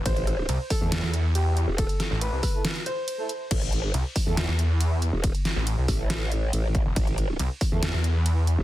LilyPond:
<<
  \new Staff \with { instrumentName = "Grand piano" } { \time 4/4 \key a \minor \tempo 4 = 139 c''4. a'4. g'4 | a'4 b'4. c''4. | r1 | r1 |
r1 | }
  \new Staff \with { instrumentName = "Brass ensemble" } { \time 4/4 \key a \minor r4. r16 <a e' a'>16 r2 | r4. r16 <a e' a'>16 r4 r16 <a e' a'>16 r8 | r4. r16 <a e' a'>16 r2 | r4. r16 <a e' a'>16 r2 |
r4. r16 <a e' a'>16 r2 | }
  \new Staff \with { instrumentName = "Detuned saw bass" } { \clef bass \time 4/4 \key a \minor r4 c,16 r4 e,4. r16 | r8. a,,8 c,16 r2 r8 | r4 c,16 r4 e,4. r16 | r8. a,,8 c,16 r2 r16 e,,16 |
r4 c,16 r4 e,4. r16 | }
  \new Staff \with { instrumentName = "Wobble bass" } { \clef bass \time 4/4 \key a \minor a,,4 r8. e,8 r4. e,,16~ | e,,16 r2. r8. | a,,4 r8. e,8 r4. e,,16~ | e,,16 r4 r16 a,,4. a,,8. r16 |
a,,4 r8. e,8 r4. e,,16 | }
  \new DrumStaff \with { instrumentName = "Drums" } \drummode { \time 4/4 <hh bd cymr>16 hh16 <hh ss>8 <hh cymr>8 <hho bd>8 <hh cymr sn>8 hh8 <hh cymr>8 hh8 | <hh bd cymr>16 hh16 <hh ss sn>8 <hh cymr>8 <hho bd ss>8 <hh cymr sn>16 hh16 hh8 <hh cymr>8 hh8 | <cymc hh bd cymr>16 hh16 hh8 <hh cymr>8 <hho bd>8 <hh cymr sn>8 hh8 <hh cymr>8 hh8 | <hh bd cymr>16 hh16 <hh sn>8 <hh cymr>8 <hho bd ss>8 <hh cymr sn>8 hh8 <hh cymr>8 <hh bd>8 |
<hh bd cymr>16 hh16 hh8 <hh cymr>8 <hho bd>8 <hh cymr sn>8 hh8 <hh cymr>8 hh8 | }
>>